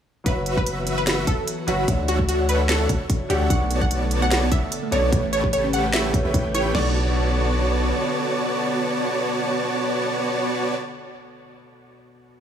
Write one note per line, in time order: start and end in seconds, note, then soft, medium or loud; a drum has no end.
0.24 1.25 F#1 medium
0.24 3.47 E3 medium
0.24 1.65 F#3 medium
0.24 1.87 B3 medium
0.24 1.65 F#4 medium
0.24 3.47 F#4 loud
0.24 1.25 F#4 medium
0.24 1.25 B4 medium
0.24 0.46 B4 loud
0.24 1.66 B4 medium
0.24 1.66 C#5 medium
0.24 1.25 E5 loud
0.24 1.67 E5 medium
0.24 kick loud
0.24 closed hi-hat medium
0.46 closed hi-hat medium
0.57 0.84 B4 loud
0.57 kick medium
0.67 closed hi-hat medium
0.87 closed hi-hat medium
0.98 1.18 B4 medium
1.07 snare loud
1.07 closed hi-hat medium
1.27 1.36 F#1 loud
1.27 1.38 F#4 medium
1.27 1.55 A4 medium
1.27 1.38 B4 medium
1.27 1.38 E5 medium
1.27 kick loud
1.27 closed hi-hat medium
1.48 closed hi-hat medium
1.67 1.86 F#1 loud
1.67 1.85 F#3 loud
1.67 1.86 F#4 medium
1.67 1.86 F#4 loud
1.67 1.95 F#4 medium
1.67 1.86 B4 medium
1.67 1.86 C#5 medium
1.67 1.86 E5 loud
1.67 1.86 F#5 loud
1.67 closed hi-hat medium
1.86 2.88 D2 loud
1.86 3.27 D3 medium
1.86 3.27 D4 medium
1.86 2.87 D4 loud
1.86 3.28 F#4 medium
1.86 2.87 A4 medium
1.86 3.49 C#5 medium
1.86 2.87 C#5 medium
1.86 3.28 C#5 medium
1.86 2.87 E5 medium
1.86 3.29 E5 medium
1.86 2.87 F#5 loud
1.86 kick loud
1.86 closed hi-hat medium
2.08 2.23 F#4 medium
2.08 closed hi-hat medium
2.19 kick medium
2.29 2.43 F#4 medium
2.29 closed hi-hat medium
2.49 2.63 B4 medium
2.49 closed hi-hat medium
2.69 2.89 A4 medium
2.69 snare loud
2.69 closed hi-hat medium
2.89 2.98 D2 loud
2.89 3.01 D4 medium
2.89 3.01 A4 medium
2.89 3.01 C#5 medium
2.89 3.01 E5 medium
2.89 3.01 F#5 medium
2.89 kick loud
2.89 closed hi-hat medium
3.10 kick loud
3.10 closed hi-hat medium
3.29 3.48 D2 loud
3.29 3.47 D3 loud
3.29 3.48 D4 medium
3.29 3.48 D4 loud
3.29 3.48 F#4 medium
3.29 3.44 G4 medium
3.29 3.48 A4 medium
3.29 3.48 C#5 medium
3.29 3.48 E5 medium
3.29 3.48 F#5 loud
3.29 3.49 F#5 loud
3.29 closed hi-hat medium
3.48 4.50 B1 loud
3.48 4.89 B2 medium
3.48 5.11 D3 medium
3.48 4.90 B3 medium
3.48 5.11 B3 medium
3.48 4.49 B3 medium
3.48 4.90 D4 medium
3.48 4.49 F#4 medium
3.48 5.11 A4 medium
3.48 4.91 A4 medium
3.48 4.49 C#5 medium
3.48 4.49 D5 medium
3.48 3.70 F#5 loud
3.48 4.49 A5 loud
3.48 kick loud
3.48 closed hi-hat medium
3.52 4.91 C#6 medium
3.61 3.65 A3 medium
3.70 3.78 A4 medium
3.70 closed hi-hat medium
3.81 3.86 B3 loud
3.81 4.08 F#5 medium
3.81 kick medium
3.91 3.98 A3 medium
3.91 closed hi-hat medium
4.02 4.04 A3 medium
4.11 closed hi-hat medium
4.22 4.26 A3 medium
4.22 4.42 F#5 medium
4.31 4.39 A4 medium
4.31 snare loud
4.31 closed hi-hat medium
4.42 4.46 B3 loud
4.52 4.61 B1 loud
4.52 4.63 B3 medium
4.52 4.63 F#4 medium
4.52 4.63 C#5 medium
4.52 4.63 D5 medium
4.52 4.79 E5 medium
4.52 4.63 A5 medium
4.52 kick loud
4.52 closed hi-hat medium
4.63 4.65 A3 medium
4.72 closed hi-hat medium
4.83 4.87 A3 medium
4.91 5.11 B1 loud
4.91 5.10 B2 loud
4.91 5.10 B3 medium
4.91 5.10 B3 loud
4.91 5.10 D4 medium
4.91 5.10 F#4 medium
4.91 4.99 A4 medium
4.91 5.11 A4 medium
4.91 5.10 C#5 medium
4.91 5.20 C#5 loud
4.91 5.10 D5 medium
4.91 5.11 D5 loud
4.91 5.10 A5 loud
4.91 closed hi-hat medium
5.03 5.07 B3 loud
5.10 6.23 A1 loud
5.10 6.73 C#3 medium
5.10 6.11 A3 medium
5.10 6.73 A3 medium
5.10 6.12 A3 medium
5.10 5.20 A3 medium
5.10 6.11 E4 medium
5.10 6.73 G4 medium
5.10 6.12 G4 medium
5.10 6.12 B4 medium
5.10 6.12 C#5 medium
5.10 6.13 C#5 medium
5.10 6.12 A5 loud
5.10 kick loud
5.10 closed hi-hat medium
5.24 5.26 A3 medium
5.33 5.47 C#5 medium
5.33 closed hi-hat medium
5.44 5.48 A3 medium
5.44 kick medium
5.53 5.60 A4 medium
5.53 5.67 C#5 medium
5.53 closed hi-hat medium
5.64 5.68 C#4 loud
5.73 5.81 A3 medium
5.73 5.88 F#5 medium
5.73 closed hi-hat medium
5.84 5.87 A3 medium
5.93 6.14 E5 loud
5.93 snare loud
5.93 closed hi-hat medium
6.05 6.09 A3 medium
6.13 6.21 A3 medium
6.13 6.22 E4 medium
6.13 6.23 G4 medium
6.13 6.23 B4 medium
6.13 6.17 C#5 medium
6.13 6.24 C#5 medium
6.13 kick loud
6.13 closed hi-hat medium
6.23 6.32 A1 medium
6.23 6.71 A3 medium
6.23 6.32 A3 medium
6.23 6.72 E4 medium
6.23 6.72 G4 medium
6.23 6.32 G4 medium
6.23 6.31 G4 medium
6.23 6.32 B4 medium
6.23 6.73 B4 medium
6.23 6.32 C#5 medium
6.23 6.32 G5 loud
6.27 6.73 C#5 loud
6.34 6.73 A1 loud
6.34 6.72 A3 medium
6.34 6.39 E4 loud
6.34 6.72 G4 medium
6.34 6.72 B4 medium
6.34 6.72 C#5 medium
6.34 6.72 G5 medium
6.34 kick loud
6.34 closed hi-hat medium
6.45 6.48 A3 loud
6.54 6.62 E4 loud
6.54 6.69 C#5 medium
6.54 closed hi-hat medium
6.65 6.71 E4 medium
6.72 7.92 B1 medium
6.72 11.35 B2 medium
6.72 10.75 D3 medium
6.72 6.93 A3 loud
6.72 11.36 B3 medium
6.72 10.75 B3 medium
6.72 11.38 D4 medium
6.72 10.75 F#4 medium
6.72 10.75 A4 medium
6.72 10.75 C#5 medium
6.72 10.75 D5 medium
6.72 11.38 D5 medium
6.72 10.75 A5 medium
6.72 snare loud
6.72 crash medium
6.76 11.39 A4 medium
6.76 11.41 C#6 loud